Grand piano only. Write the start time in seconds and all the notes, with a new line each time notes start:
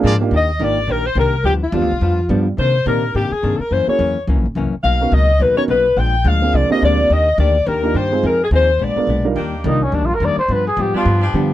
0.21 A#3 D4 D#4 F4 G4
0.60 A#3 D4 D#4 F4 G4
1.74 G3 B3 D4 F4 G4
2.29 G3 B3 D4 F4 G4
2.86 A#3 C4 D4 D#4 G4
3.88 A#3 C#4 E4 F#4 G#4
5.01 B3 C#4 D#4 F#4 A#4
5.57 B3 C#4 D#4 F#4 A#4
6.42 A#3 C4 D4 F4 G#4
6.70 A#3 C4 D4 F4 G4
7.83 A#3 D4 D#4 F4 G4
8.12 G#3 C4 D#4 F4 G#4
8.96 G#3 B3 D4 F4 A#4
9.24 G3 D4 D#4 F4 A#4
9.65 G3 D4 D#4 F4 A#4
10.95 G3 B3 D4 F4 G4
11.34 G3 B3 D4 F4 G4